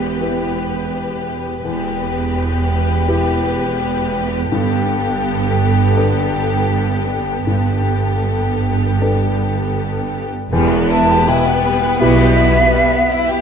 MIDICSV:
0, 0, Header, 1, 9, 480
1, 0, Start_track
1, 0, Key_signature, 1, "minor"
1, 0, Tempo, 719424
1, 1098, Time_signature, 4, 2, 24, 8
1, 3978, Tempo, 759494
1, 6858, Tempo, 733496
1, 8750, End_track
2, 0, Start_track
2, 0, Title_t, "Flute"
2, 0, Program_c, 0, 73
2, 7108, Note_on_c, 0, 81, 82
2, 7345, Note_on_c, 0, 79, 77
2, 7355, Note_off_c, 0, 81, 0
2, 7825, Note_on_c, 0, 76, 100
2, 7835, Note_off_c, 0, 79, 0
2, 8750, Note_off_c, 0, 76, 0
2, 8750, End_track
3, 0, Start_track
3, 0, Title_t, "Violin section"
3, 0, Program_c, 1, 48
3, 0, Note_on_c, 1, 71, 32
3, 1070, Note_off_c, 1, 71, 0
3, 1099, Note_on_c, 1, 71, 44
3, 2986, Note_off_c, 1, 71, 0
3, 3008, Note_on_c, 1, 69, 50
3, 4901, Note_off_c, 1, 69, 0
3, 4933, Note_on_c, 1, 69, 38
3, 6706, Note_off_c, 1, 69, 0
3, 6869, Note_on_c, 1, 71, 61
3, 8750, Note_off_c, 1, 71, 0
3, 8750, End_track
4, 0, Start_track
4, 0, Title_t, "Felt piano"
4, 0, Program_c, 2, 0
4, 0, Control_c, 2, 64, 127
4, 0, Note_on_c, 2, 40, 33
4, 134, Note_on_c, 2, 64, 28
4, 138, Note_on_c, 2, 67, 25
4, 139, Note_on_c, 2, 71, 29
4, 1069, Note_off_c, 2, 40, 0
4, 1069, Note_off_c, 2, 64, 0
4, 1071, Note_off_c, 2, 67, 0
4, 1072, Note_off_c, 2, 71, 0
4, 1097, Note_on_c, 2, 40, 36
4, 1110, Control_c, 2, 64, 0
4, 1211, Control_c, 2, 64, 127
4, 2058, Note_on_c, 2, 64, 37
4, 2058, Note_on_c, 2, 67, 38
4, 2061, Note_on_c, 2, 71, 38
4, 2985, Note_off_c, 2, 40, 0
4, 2987, Note_off_c, 2, 64, 0
4, 2987, Note_off_c, 2, 67, 0
4, 2989, Note_off_c, 2, 71, 0
4, 3015, Note_on_c, 2, 43, 47
4, 3026, Control_c, 2, 64, 0
4, 3125, Control_c, 2, 64, 127
4, 3982, Note_on_c, 2, 62, 33
4, 3983, Note_on_c, 2, 69, 36
4, 3985, Note_on_c, 2, 71, 41
4, 4905, Note_off_c, 2, 43, 0
4, 4906, Note_off_c, 2, 62, 0
4, 4906, Note_off_c, 2, 69, 0
4, 4907, Note_off_c, 2, 71, 0
4, 4930, Note_on_c, 2, 43, 36
4, 4941, Control_c, 2, 64, 0
4, 5032, Control_c, 2, 64, 127
4, 5907, Note_on_c, 2, 62, 27
4, 5907, Note_on_c, 2, 69, 28
4, 5909, Note_on_c, 2, 71, 30
4, 6835, Note_off_c, 2, 43, 0
4, 6839, Note_off_c, 2, 62, 0
4, 6839, Note_off_c, 2, 69, 0
4, 6840, Note_off_c, 2, 71, 0
4, 6861, Note_on_c, 2, 40, 57
4, 6872, Control_c, 2, 64, 0
4, 6973, Control_c, 2, 64, 127
4, 7353, Note_on_c, 2, 47, 49
4, 7832, Note_on_c, 2, 64, 41
4, 7833, Note_on_c, 2, 67, 46
4, 7838, Note_on_c, 2, 71, 48
4, 8115, Note_off_c, 2, 47, 0
4, 8750, Note_off_c, 2, 40, 0
4, 8750, Note_off_c, 2, 64, 0
4, 8750, Note_off_c, 2, 67, 0
4, 8750, Note_off_c, 2, 71, 0
4, 8750, End_track
5, 0, Start_track
5, 0, Title_t, "Violin section"
5, 0, Program_c, 3, 48
5, 0, Note_on_c, 3, 67, 36
5, 1071, Note_off_c, 3, 67, 0
5, 1105, Note_on_c, 3, 67, 48
5, 2989, Note_off_c, 3, 67, 0
5, 3016, Note_on_c, 3, 67, 55
5, 4905, Note_off_c, 3, 67, 0
5, 4931, Note_on_c, 3, 67, 38
5, 6705, Note_off_c, 3, 67, 0
5, 6870, Note_on_c, 3, 55, 61
5, 6979, Note_off_c, 3, 55, 0
5, 6991, Note_on_c, 3, 59, 54
5, 7108, Note_on_c, 3, 64, 56
5, 7109, Note_off_c, 3, 59, 0
5, 7228, Note_off_c, 3, 64, 0
5, 7234, Note_on_c, 3, 67, 55
5, 7352, Note_off_c, 3, 67, 0
5, 7354, Note_on_c, 3, 64, 58
5, 7472, Note_off_c, 3, 64, 0
5, 7475, Note_on_c, 3, 59, 53
5, 7592, Note_off_c, 3, 59, 0
5, 7594, Note_on_c, 3, 55, 49
5, 7711, Note_off_c, 3, 55, 0
5, 7715, Note_on_c, 3, 59, 54
5, 7830, Note_off_c, 3, 59, 0
5, 7833, Note_on_c, 3, 64, 62
5, 7941, Note_off_c, 3, 64, 0
5, 7958, Note_on_c, 3, 67, 54
5, 8071, Note_off_c, 3, 67, 0
5, 8075, Note_on_c, 3, 64, 59
5, 8189, Note_off_c, 3, 64, 0
5, 8189, Note_on_c, 3, 59, 55
5, 8306, Note_off_c, 3, 59, 0
5, 8313, Note_on_c, 3, 55, 58
5, 8428, Note_off_c, 3, 55, 0
5, 8433, Note_on_c, 3, 59, 54
5, 8547, Note_off_c, 3, 59, 0
5, 8547, Note_on_c, 3, 64, 60
5, 8663, Note_off_c, 3, 64, 0
5, 8673, Note_on_c, 3, 67, 56
5, 8750, Note_off_c, 3, 67, 0
5, 8750, End_track
6, 0, Start_track
6, 0, Title_t, "French horn section"
6, 0, Program_c, 4, 60
6, 6858, Note_on_c, 4, 71, 64
6, 6861, Note_on_c, 4, 55, 69
6, 8750, Note_off_c, 4, 55, 0
6, 8750, Note_off_c, 4, 71, 0
6, 8750, End_track
7, 0, Start_track
7, 0, Title_t, "Viola section"
7, 0, Program_c, 5, 48
7, 0, Note_on_c, 5, 59, 33
7, 1072, Note_off_c, 5, 59, 0
7, 1100, Note_on_c, 5, 59, 42
7, 2987, Note_off_c, 5, 59, 0
7, 3021, Note_on_c, 5, 59, 53
7, 4908, Note_off_c, 5, 59, 0
7, 4930, Note_on_c, 5, 59, 37
7, 6705, Note_off_c, 5, 59, 0
7, 6861, Note_on_c, 5, 59, 64
7, 8750, Note_off_c, 5, 59, 0
7, 8750, End_track
8, 0, Start_track
8, 0, Title_t, "Cello section"
8, 0, Program_c, 6, 48
8, 0, Note_on_c, 6, 40, 35
8, 1070, Note_off_c, 6, 40, 0
8, 1101, Note_on_c, 6, 40, 49
8, 2987, Note_off_c, 6, 40, 0
8, 3014, Note_on_c, 6, 43, 57
8, 4904, Note_off_c, 6, 43, 0
8, 4928, Note_on_c, 6, 43, 38
8, 6704, Note_off_c, 6, 43, 0
8, 6862, Note_on_c, 6, 40, 65
8, 7268, Note_off_c, 6, 40, 0
8, 7832, Note_on_c, 6, 47, 67
8, 8226, Note_off_c, 6, 47, 0
8, 8750, End_track
9, 0, Start_track
9, 0, Title_t, "Double bass section"
9, 0, Program_c, 7, 48
9, 0, Note_on_c, 7, 28, 36
9, 1068, Note_off_c, 7, 28, 0
9, 1094, Note_on_c, 7, 28, 47
9, 2984, Note_off_c, 7, 28, 0
9, 3013, Note_on_c, 7, 31, 57
9, 4904, Note_off_c, 7, 31, 0
9, 4929, Note_on_c, 7, 31, 40
9, 6704, Note_off_c, 7, 31, 0
9, 6865, Note_on_c, 7, 28, 75
9, 7270, Note_off_c, 7, 28, 0
9, 7825, Note_on_c, 7, 35, 69
9, 8223, Note_off_c, 7, 35, 0
9, 8750, End_track
0, 0, End_of_file